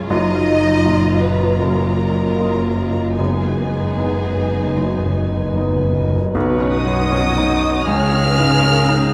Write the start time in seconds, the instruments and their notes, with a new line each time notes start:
Already playing: felt piano F#1 F#2 G#3 F4 C#5, harp G#3 F4 G#4 C#5 C#6, viola section F4, violin section G#5
0.07 double bass section F#1, felt piano F#1 F#2, cello section F#2, harp F#2, viola section F#3, french horn section D#4, violin section D#5 A#5
0.28 harp F#3
0.47 harp D#5
0.66 harp A#5
0.85 felt piano A#2 F4 D#5, harp D#6
1.04 harp F#4
1.22 french horn section B4, violin section B4, harp D#5
1.43 harp F4
1.59 felt piano F#1 F#2, harp F#2, french horn section A#3, violin section A#4
1.81 harp A#3
2.01 harp D#5
2.20 harp A#4
2.39 felt piano A#3 F4 D#5, harp D#6
2.59 harp A#4
2.79 harp D#5
2.98 harp F4
3.17 felt piano F#1 F#2, timpani F#2, harp F#2, french horn section G#3, viola section B3 D#4, violin section G#4 G#5
3.26 timpani F#2
3.34 timpani F#2
3.38 timpani F#2, harp B3
3.56 timpani F#2, harp D#5
3.72 timpani F#2
3.78 timpani F#2, harp B4
3.96 timpani F#2, felt piano B3 D#4 D#5, harp D#6
4.03 timpani F#2
4.12 timpani F#2
4.18 timpani F#2, harp B4
4.28 timpani F#2
4.36 timpani F#2, harp D#5
4.44 timpani F#2
4.52 timpani F#2
4.57 timpani F#2, harp D#4
4.67 timpani F#2
4.76 felt piano F#1 F#2, timpani F#2, harp F#2
4.83 timpani F#2
4.91 timpani F#2
4.97 timpani F#2, harp B3
5.05 timpani F#2
5.13 timpani F#2, harp D#5
5.22 timpani F#2
5.29 timpani F#2
5.37 timpani F#2, harp B4
5.44 timpani F#2
5.53 timpani F#2, felt piano B3, harp D#6
5.57 timpani F#2, felt piano D#4 D#5
5.68 timpani F#2
5.76 timpani F#2, harp B4
5.84 timpani F#2
5.92 timpani F#2, harp D#5
6.00 timpani F#2
6.08 timpani F#2
6.15 timpani F#2, harp D#4
6.24 timpani F#2
6.34 felt piano B1, double bass section B1, harp B2, cello section B2, french horn section C#4 D#4, viola section D#4 B4, oboe C#5, flute section F#5
6.60 felt piano C#4
6.72 harp B3, violin section D#5 D#6
6.86 felt piano F#2
7.10 viola section F3 D#5, felt piano C#4, harp C#5
7.38 felt piano D#4
7.48 viola section D#4, harp D#4
7.62 felt piano D#5
7.86 double bass section C#2, felt piano C#2, cello section C#3, harp C#3, timpani C#3, viola section C#4 C#5, french horn section D#4, oboe D#5, violin section F5 F6, flute section G#5
8.13 felt piano C#4
8.25 harp G#3, viola section B4
8.39 felt piano G#2
8.62 felt piano C#4, viola section A#4, harp C#5
8.89 felt piano D#4
9.00 harp D#4, viola section G#4